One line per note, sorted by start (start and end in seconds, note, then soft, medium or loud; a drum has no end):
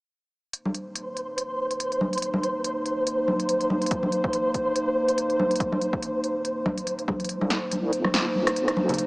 0.53 7.26 A#3 medium
0.53 7.26 D#4 medium
0.53 7.30 C5 medium
0.53 7.26 C5 medium
0.53 closed hi-hat medium
0.65 high conga medium
0.75 closed hi-hat medium
0.96 closed hi-hat medium
1.17 closed hi-hat soft
1.38 closed hi-hat medium
1.71 closed hi-hat medium
1.80 closed hi-hat medium
1.92 closed hi-hat soft
2.01 high conga medium
2.13 closed hi-hat soft
2.18 closed hi-hat medium
2.22 closed hi-hat medium
2.34 high conga medium
2.43 closed hi-hat medium
2.64 closed hi-hat medium
2.86 closed hi-hat medium
3.07 closed hi-hat medium
3.28 high conga medium
3.40 closed hi-hat soft
3.49 closed hi-hat medium
3.61 closed hi-hat soft
3.70 high conga medium
3.82 closed hi-hat soft
3.86 closed hi-hat medium
3.91 kick loud
3.91 closed hi-hat medium
4.03 high conga medium
4.12 closed hi-hat medium
4.24 kick loud
4.33 closed hi-hat medium
4.54 kick medium
4.54 closed hi-hat soft
4.76 closed hi-hat medium
5.08 closed hi-hat medium
5.18 closed hi-hat medium
5.30 closed hi-hat soft
5.39 high conga medium
5.51 closed hi-hat soft
5.56 closed hi-hat medium
5.60 kick loud
5.60 closed hi-hat medium
5.72 high conga medium
5.81 closed hi-hat soft
5.93 kick loud
6.03 closed hi-hat medium
6.24 closed hi-hat soft
6.45 closed hi-hat medium
6.66 kick medium
6.66 high conga loud
6.78 closed hi-hat soft
6.87 closed hi-hat medium
6.99 closed hi-hat soft
7.08 kick loud
7.08 high conga medium
7.20 closed hi-hat soft
7.25 closed hi-hat medium
7.29 7.91 C2 loud
7.29 9.07 A#3 medium
7.29 9.07 D#4 medium
7.29 9.07 C5 medium
7.29 closed hi-hat medium
7.41 high conga medium
7.50 snare medium
7.50 closed hi-hat medium
7.71 closed hi-hat medium
7.71 high conga medium
7.93 9.07 G1 medium
7.93 closed hi-hat medium
8.04 cross-stick soft
8.04 high conga medium
8.14 snare loud
8.14 closed hi-hat medium
8.35 high conga medium
8.47 cross-stick medium
8.47 closed hi-hat medium
8.56 closed hi-hat medium
8.68 cross-stick soft
8.68 closed hi-hat soft
8.77 high conga medium
8.89 closed hi-hat soft
8.89 low conga medium
8.94 closed hi-hat medium
8.98 closed hi-hat medium